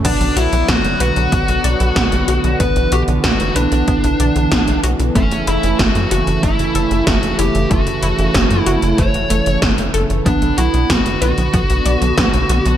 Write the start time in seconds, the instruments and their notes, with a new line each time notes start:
0.05 analog synth bass B1, analog synth pad D3 F#3 B3, synth arpeggio sound B3, lead electric guitar D4, kick, closed hi-hat, crash
0.20 analog synth bass B1, closed hi-hat
0.36 analog synth bass B1, lead electric guitar E4, synth arpeggio sound F#4, closed hi-hat
0.53 analog synth bass B1, closed hi-hat
0.68 analog synth bass B1, synth arpeggio sound B3, lead electric guitar F#4, kick, snare, closed hi-hat
0.84 analog synth bass F#1, closed hi-hat
1.00 analog synth bass B1, lead electric guitar F#4, synth arpeggio sound B4, closed hi-hat
1.16 analog synth bass B1, closed hi-hat
1.32 analog synth bass B1, synth arpeggio sound B3, kick, closed hi-hat
1.48 analog synth bass B1, closed hi-hat
1.64 analog synth bass B1, synth arpeggio sound D5, closed hi-hat
1.80 analog synth bass B1, closed hi-hat
1.96 analog synth bass B1, synth arpeggio sound B3, kick, snare, closed hi-hat
2.12 analog synth bass B1, closed hi-hat
2.28 analog synth bass B1, synth arpeggio sound F#4, closed hi-hat
2.44 analog synth bass B1, closed hi-hat
2.60 analog synth bass B1, analog synth pad E3, synth arpeggio sound B3, lead electric guitar B4, kick, closed hi-hat
2.76 analog synth bass B1, closed hi-hat
2.92 analog synth bass B1, synth arpeggio sound F#4, lead electric guitar G4, closed hi-hat
3.08 analog synth bass B1, closed hi-hat
3.24 analog synth bass B1, synth arpeggio sound B3, lead electric guitar F#4, kick, snare, closed hi-hat
3.40 analog synth bass F#1, closed hi-hat
3.56 analog synth bass B1, lead electric guitar D4, synth arpeggio sound B4, closed hi-hat
3.72 analog synth bass B1, closed hi-hat
3.88 analog synth bass B1, synth arpeggio sound B3, kick, closed hi-hat
4.04 analog synth bass B1, closed hi-hat
4.20 analog synth bass B1, synth arpeggio sound D5, closed hi-hat
4.36 analog synth bass B1, closed hi-hat
4.52 analog synth bass B1, synth arpeggio sound B3, kick, snare, closed hi-hat
4.68 analog synth bass B1, closed hi-hat
4.84 analog synth bass B1, synth arpeggio sound F#4, closed hi-hat
5.00 analog synth bass B1, closed hi-hat
5.15 analog synth bass F#1, analog synth pad C#3 A3, synth arpeggio sound A3, lead electric guitar C#4, kick, closed hi-hat
5.31 analog synth bass F#1, closed hi-hat
5.47 analog synth bass F#1, synth arpeggio sound E4, lead electric guitar E4, closed hi-hat
5.63 analog synth bass F#1, closed hi-hat
5.79 analog synth bass F#1, synth arpeggio sound A3, lead electric guitar F#4, kick, snare, closed hi-hat
5.95 analog synth bass F#2, closed hi-hat
6.11 analog synth bass F#1, synth arpeggio sound F#4, lead electric guitar F#4, closed hi-hat
6.27 analog synth bass F#1, closed hi-hat
6.43 analog synth bass F#1, synth arpeggio sound A3, lead electric guitar E4, kick, closed hi-hat
6.59 analog synth bass F#1, closed hi-hat
6.75 analog synth bass F#1, synth arpeggio sound A4, closed hi-hat
6.91 analog synth bass F#1, closed hi-hat
7.07 analog synth bass F#1, synth arpeggio sound A3, lead electric guitar F#4, kick, snare, closed hi-hat
7.23 analog synth bass F#1, closed hi-hat
7.39 analog synth bass F#1, synth arpeggio sound E4, lead electric guitar G4, closed hi-hat
7.55 analog synth bass F#1, closed hi-hat
7.71 analog synth bass F#1, synth arpeggio sound A3, lead electric guitar F#4, kick, closed hi-hat
7.87 analog synth bass F#1, closed hi-hat
8.03 analog synth bass F#1, synth arpeggio sound E4, closed hi-hat
8.19 analog synth bass F#1, closed hi-hat
8.34 analog synth bass F#1, synth arpeggio sound A3, kick, snare, closed hi-hat
8.51 analog synth bass F#2, closed hi-hat
8.60 lead electric guitar E4
8.66 analog synth bass F#1, synth arpeggio sound F#4, closed hi-hat
8.82 analog synth bass F#1, closed hi-hat
8.98 analog synth bass F#1, synth arpeggio sound A3, lead electric guitar C#5, kick, closed hi-hat
9.14 analog synth bass F#1, closed hi-hat
9.30 analog synth bass F#1, synth arpeggio sound A3, closed hi-hat
9.46 analog synth bass F#1, closed hi-hat
9.62 analog synth bass F#1, synth arpeggio sound C#5, kick, snare, closed hi-hat
9.78 analog synth bass F#1, closed hi-hat
9.94 analog synth bass F#1, synth arpeggio sound A4, closed hi-hat
10.10 analog synth bass F#1, closed hi-hat
10.26 analog synth bass B1, analog synth pad D3 B3, synth arpeggio sound B3, lead electric guitar D4, kick, closed hi-hat
10.42 analog synth bass B1, closed hi-hat
10.58 analog synth bass B1, lead electric guitar E4, synth arpeggio sound F#4, closed hi-hat
10.74 analog synth bass B1, closed hi-hat
10.90 analog synth bass B1, synth arpeggio sound B3, lead electric guitar F#4, kick, snare, closed hi-hat
11.06 analog synth bass F#1, closed hi-hat
11.22 analog synth bass B1, lead electric guitar F#4, synth arpeggio sound B4, closed hi-hat
11.38 analog synth bass B1, closed hi-hat
11.54 analog synth bass B1, synth arpeggio sound B3, kick, closed hi-hat
11.70 analog synth bass B1, closed hi-hat
11.86 analog synth bass B1, synth arpeggio sound D5, closed hi-hat
12.02 analog synth bass B1, closed hi-hat
12.18 analog synth bass B1, synth arpeggio sound B3, kick, snare, closed hi-hat
12.34 analog synth bass B1, closed hi-hat
12.49 analog synth bass B1, synth arpeggio sound F#4, closed hi-hat
12.66 analog synth bass B1, closed hi-hat